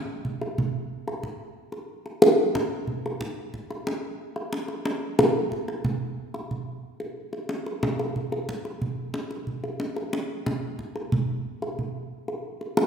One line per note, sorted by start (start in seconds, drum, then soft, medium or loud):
0.25 kendang low medium
0.41 kendang slap soft
0.58 kendang low medium
1.08 kendang slap soft
1.23 kendang low medium
1.72 kendang slap soft
2.06 kendang slap soft
2.22 kendang high medium
2.55 kendang high medium
2.55 kendang low medium
2.87 kendang low medium
3.06 kendang slap soft
3.21 kendang low medium
3.54 kendang low medium
3.71 kendang slap soft
3.87 kendang high medium
4.36 kendang slap soft
4.53 kendang high medium
4.68 kendang slap soft
4.85 kendang high medium
5.19 kendang high medium
5.19 kendang low medium
5.52 kendang low medium
5.68 kendang slap soft
5.84 kendang low medium
6.34 kendang slap soft
6.51 kendang low medium
7.00 kendang slap soft
7.33 kendang slap soft
7.49 kendang high medium
7.66 kendang slap soft
7.83 kendang high medium
7.83 kendang low medium
7.99 kendang slap soft
8.16 kendang low soft
8.32 kendang slap soft
8.49 kendang low medium
8.65 kendang slap soft
8.82 kendang low medium
9.14 kendang high medium
9.31 kendang slap soft
9.47 kendang low soft
9.64 kendang slap soft
9.80 kendang high medium
9.96 kendang slap soft
10.13 kendang high medium
10.46 kendang high medium
10.46 kendang low medium
10.79 kendang low medium
10.96 kendang slap soft
11.12 kendang low medium
11.62 kendang slap soft
11.79 kendang low medium
12.28 kendang slap soft
12.61 kendang slap soft
12.77 kendang high medium